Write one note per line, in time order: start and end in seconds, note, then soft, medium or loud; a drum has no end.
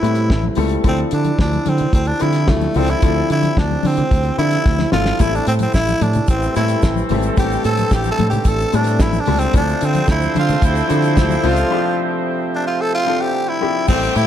0.00 0.32 A2 medium
0.00 9.51 C3 medium
0.00 0.02 G3 medium
0.00 0.81 G3 medium
0.00 0.49 G3 medium
0.00 0.02 A3 medium
0.00 0.81 A3 medium
0.00 0.49 A3 medium
0.00 0.02 C4 medium
0.00 0.49 C4 medium
0.00 0.02 E4 medium
0.00 0.45 E4 loud
0.00 7.35 E4 medium
0.00 0.50 E4 medium
0.00 0.58 A4 medium
0.00 0.50 B4 medium
0.04 closed hi-hat medium
0.15 closed hi-hat soft
0.30 0.48 A1 loud
0.30 kick loud
0.30 snare medium
0.44 high conga medium
0.55 0.75 C#2 loud
0.55 0.81 G3 medium
0.55 0.80 A3 medium
0.55 0.81 C4 medium
0.55 0.81 E4 medium
0.55 0.81 A4 medium
0.55 open hi-hat medium
0.55 muted conga soft
0.55 low conga medium
0.69 closed hi-hat soft
0.84 1.03 D2 medium
0.84 1.78 F3 medium
0.84 5.17 F3 medium
0.84 1.78 C4 medium
0.84 0.99 C4 medium
0.84 3.00 D4 medium
0.84 1.78 D4 medium
0.84 1.79 E4 medium
0.84 1.79 A4 medium
0.84 kick loud
0.84 closed hi-hat medium
0.84 muted conga soft
0.84 low conga medium
0.97 closed hi-hat soft
1.11 1.30 D3 loud
1.11 1.39 D4 medium
1.11 closed hi-hat medium
1.24 closed hi-hat medium
1.24 high conga medium
1.39 1.57 D2 loud
1.39 1.70 D4 medium
1.39 kick medium
1.39 snare loud
1.53 closed hi-hat soft
1.53 high conga medium
1.66 1.85 D3 medium
1.66 1.94 C4 medium
1.66 closed hi-hat medium
1.66 high conga medium
1.78 closed hi-hat soft
1.78 low conga medium
1.93 2.12 D2 loud
1.93 2.09 C4 medium
1.93 kick loud
1.93 closed hi-hat medium
2.05 2.23 D4 medium
2.05 closed hi-hat soft
2.19 2.50 D3 loud
2.19 2.67 F3 medium
2.19 2.67 C4 medium
2.19 2.67 D4 medium
2.19 2.68 E4 medium
2.19 2.50 E4 medium
2.19 2.68 A4 medium
2.19 closed hi-hat medium
2.19 muted conga soft
2.33 snare soft
2.33 closed hi-hat soft
2.48 2.66 D2 medium
2.48 2.79 A3 medium
2.48 kick medium
2.48 snare loud
2.48 muted conga soft
2.61 closed hi-hat soft
2.61 high conga medium
2.74 2.94 C#2 medium
2.74 2.99 F3 medium
2.74 2.99 C4 medium
2.74 2.91 C4 medium
2.74 2.99 D4 medium
2.74 2.99 E4 medium
2.74 3.00 A4 medium
2.74 open hi-hat medium
2.74 low conga medium
2.87 3.30 E4 loud
2.87 closed hi-hat soft
3.02 3.21 D2 loud
3.02 3.96 F3 medium
3.02 3.96 C4 medium
3.02 5.19 C4 medium
3.02 3.96 D4 medium
3.02 3.97 E4 medium
3.02 3.97 A4 medium
3.02 kick loud
3.02 closed hi-hat medium
3.02 muted conga soft
3.02 low conga medium
3.30 3.48 D3 medium
3.30 3.60 E4 loud
3.30 closed hi-hat medium
3.30 muted conga soft
3.43 closed hi-hat soft
3.43 high conga medium
3.57 3.75 D2 medium
3.57 3.88 D4 loud
3.57 kick loud
3.57 snare loud
3.57 muted conga soft
3.71 high conga medium
3.83 4.02 D3 medium
3.83 4.38 C4 medium
3.83 open hi-hat medium
3.83 muted conga soft
3.83 high conga medium
3.97 closed hi-hat soft
3.97 low conga medium
4.11 4.29 D2 medium
4.11 kick loud
4.11 closed hi-hat medium
4.11 muted conga soft
4.24 closed hi-hat soft
4.37 4.57 D3 medium
4.37 4.85 F3 medium
4.37 4.85 C4 medium
4.37 4.85 D4 medium
4.37 4.85 E4 medium
4.37 4.89 E4 loud
4.37 4.86 A4 medium
4.37 closed hi-hat medium
4.50 snare soft
4.50 closed hi-hat soft
4.66 4.84 D2 medium
4.66 kick loud
4.66 snare medium
4.66 muted conga soft
4.79 snare medium
4.79 high conga medium
4.91 5.11 G#1 loud
4.91 5.16 F3 medium
4.91 5.16 C4 medium
4.91 5.16 D4 medium
4.91 5.16 E4 medium
4.91 5.22 F4 loud
4.91 5.16 A4 medium
4.91 snare medium
4.91 muted conga soft
4.91 low conga medium
5.06 snare medium
5.19 5.38 A1 loud
5.19 6.13 G3 medium
5.19 6.13 A3 medium
5.19 6.13 C4 medium
5.19 6.14 E4 medium
5.19 5.37 E4 loud
5.19 6.14 A4 medium
5.19 kick loud
5.19 closed hi-hat medium
5.19 muted conga soft
5.19 low conga medium
5.19 shaker medium
5.23 9.52 G3 medium
5.23 9.52 A3 medium
5.35 5.47 D4 loud
5.35 shaker medium
5.47 5.65 A2 medium
5.47 5.54 C4 medium
5.47 closed hi-hat medium
5.47 shaker medium
5.59 5.74 C4 medium
5.59 closed hi-hat medium
5.59 high conga medium
5.59 shaker soft
5.74 5.92 A1 medium
5.74 6.04 E4 loud
5.74 kick medium
5.74 snare medium
5.74 muted conga soft
5.74 shaker medium
5.88 closed hi-hat soft
5.88 high conga medium
5.88 shaker medium
6.01 6.20 A2 loud
6.01 6.29 D4 medium
6.01 closed hi-hat medium
6.01 high conga medium
6.13 closed hi-hat soft
6.13 low conga medium
6.13 shaker medium
6.27 6.47 A1 loud
6.27 9.24 E3 medium
6.27 9.24 A3 medium
6.27 9.24 C4 medium
6.27 6.55 C4 medium
6.27 9.24 A4 medium
6.27 kick loud
6.27 closed hi-hat medium
6.27 muted conga soft
6.27 shaker medium
6.42 shaker medium
6.55 6.74 A2 medium
6.55 7.03 G3 medium
6.55 7.03 A3 medium
6.55 7.03 C4 medium
6.55 7.07 E4 medium
6.55 7.03 E4 medium
6.55 7.03 A4 medium
6.55 closed hi-hat medium
6.55 muted conga soft
6.55 shaker medium
6.68 closed hi-hat soft
6.68 shaker medium
6.82 7.01 A1 medium
6.82 kick loud
6.82 snare loud
6.82 shaker medium
6.96 high conga medium
6.96 shaker soft
7.09 7.29 G#1 loud
7.09 7.34 G3 medium
7.09 7.34 A3 medium
7.09 7.34 C4 medium
7.09 7.34 E4 medium
7.09 7.34 G4 medium
7.09 open hi-hat medium
7.09 low conga medium
7.22 closed hi-hat soft
7.22 shaker medium
7.37 7.56 A1 medium
7.37 8.31 G3 medium
7.37 8.31 A3 medium
7.37 8.31 C4 medium
7.37 11.68 D4 medium
7.37 8.31 E4 medium
7.37 7.63 G4 loud
7.37 8.31 A4 medium
7.37 kick loud
7.37 closed hi-hat medium
7.37 low conga medium
7.37 shaker medium
7.50 closed hi-hat soft
7.50 shaker soft
7.64 7.83 A2 medium
7.64 7.95 A4 loud
7.64 closed hi-hat medium
7.64 shaker medium
7.77 closed hi-hat medium
7.77 high conga medium
7.77 shaker soft
7.91 8.09 A1 medium
7.91 8.10 G4 loud
7.91 kick loud
7.91 snare loud
7.91 shaker medium
8.04 closed hi-hat soft
8.04 high conga medium
8.04 shaker medium
8.11 8.27 A4 loud
8.18 8.38 A2 loud
8.18 closed hi-hat medium
8.18 muted conga soft
8.18 high conga medium
8.30 8.50 G4 medium
8.30 closed hi-hat soft
8.30 low conga medium
8.30 shaker soft
8.45 8.64 A1 loud
8.45 8.77 A4 loud
8.45 kick loud
8.45 closed hi-hat medium
8.45 muted conga soft
8.45 shaker medium
8.57 closed hi-hat soft
8.57 shaker medium
8.73 9.02 A2 medium
8.73 9.20 G3 medium
8.73 9.20 A3 medium
8.73 9.20 C4 medium
8.73 9.02 D4 medium
8.73 9.20 E4 medium
8.73 9.20 A4 medium
8.73 closed hi-hat medium
8.73 shaker medium
8.84 snare soft
8.84 closed hi-hat medium
8.84 shaker medium
9.00 9.18 A1 loud
9.00 9.21 E4 medium
9.00 kick loud
9.00 snare loud
9.00 muted conga soft
9.00 shaker medium
9.13 high conga medium
9.13 shaker medium
9.20 9.40 D4 loud
9.26 9.46 C#2 loud
9.26 9.51 G3 medium
9.26 9.51 A3 medium
9.26 9.51 C4 medium
9.26 9.51 E4 medium
9.26 9.51 A4 medium
9.26 open hi-hat medium
9.26 muted conga soft
9.26 low conga medium
9.39 9.56 C4 loud
9.39 closed hi-hat soft
9.39 shaker medium
9.53 9.72 D2 loud
9.53 13.71 C3 medium
9.53 10.47 F3 medium
9.53 13.58 F3 medium
9.53 13.71 F3 medium
9.53 13.58 A3 medium
9.53 10.48 C4 medium
9.53 13.57 C4 medium
9.53 10.48 D4 medium
9.53 9.86 D4 loud
9.53 10.48 E4 medium
9.53 10.48 A4 medium
9.53 13.57 C5 loud
9.53 13.71 E5 loud
9.53 kick loud
9.53 closed hi-hat medium
9.53 muted conga soft
9.53 low conga medium
9.53 shaker medium
9.68 shaker soft
9.81 10.00 D3 loud
9.81 10.10 C4 loud
9.81 closed hi-hat medium
9.81 shaker medium
9.94 closed hi-hat medium
9.94 high conga medium
9.94 shaker soft
10.07 10.26 D2 loud
10.07 10.35 E4 medium
10.07 kick loud
10.07 snare loud
10.07 shaker medium
10.21 high conga medium
10.21 shaker medium
10.35 10.54 D3 medium
10.35 10.67 F4 medium
10.35 closed hi-hat medium
10.35 high conga medium
10.48 closed hi-hat soft
10.48 low conga medium
10.48 shaker soft
10.62 10.81 D2 medium
10.62 11.49 E4 medium
10.62 kick loud
10.62 closed hi-hat medium
10.62 muted conga soft
10.62 shaker medium
10.75 closed hi-hat soft
10.75 shaker medium
10.88 11.19 D3 medium
10.88 11.36 F3 medium
10.88 11.36 C4 medium
10.88 11.36 D4 medium
10.88 11.36 E4 medium
10.88 11.37 A4 medium
10.88 closed hi-hat medium
10.88 shaker medium
11.02 closed hi-hat soft
11.02 shaker medium
11.17 11.35 D2 loud
11.17 kick loud
11.17 snare loud
11.17 muted conga soft
11.17 shaker medium
11.30 high conga medium
11.30 shaker medium
11.43 11.63 C#2 loud
11.43 11.67 F3 medium
11.43 11.67 C4 medium
11.43 11.67 D4 medium
11.43 11.68 E4 medium
11.43 11.68 A4 medium
11.43 open hi-hat medium
11.43 muted conga soft
11.43 low conga medium
11.47 12.00 F4 loud
11.56 closed hi-hat soft
11.56 shaker medium
11.70 12.64 F3 medium
11.70 12.65 C4 medium
11.70 13.71 C4 medium
11.70 12.65 D4 medium
11.70 12.65 E4 medium
11.70 12.65 G4 medium
12.55 12.67 D4 medium
12.67 12.83 F4 medium
12.81 12.94 A4 loud
12.95 13.22 F4 loud
13.06 13.53 F3 medium
13.06 13.54 C4 medium
13.06 13.54 D4 medium
13.06 13.54 E4 medium
13.06 13.54 A4 medium
13.20 13.50 G4 loud
13.49 13.88 E4 medium
13.60 13.84 F3 medium
13.60 13.85 C4 medium
13.60 13.85 D4 medium
13.60 13.85 E4 medium
13.60 13.85 G4 medium
13.87 14.07 A1 loud
13.87 14.27 C3 medium
13.87 14.27 G3 medium
13.87 14.27 A3 medium
13.87 14.18 C4 loud
13.87 14.27 C4 medium
13.87 14.27 E4 medium
13.87 14.27 G4 medium
13.87 14.27 A4 medium
13.87 14.27 E5 medium
13.87 14.27 G5 loud
13.87 kick loud
13.87 crash loud
13.87 muted conga soft
13.87 shaker medium
14.03 shaker medium
14.16 14.27 A2 loud
14.16 14.27 E4 loud
14.16 closed hi-hat medium
14.16 muted conga soft
14.16 shaker medium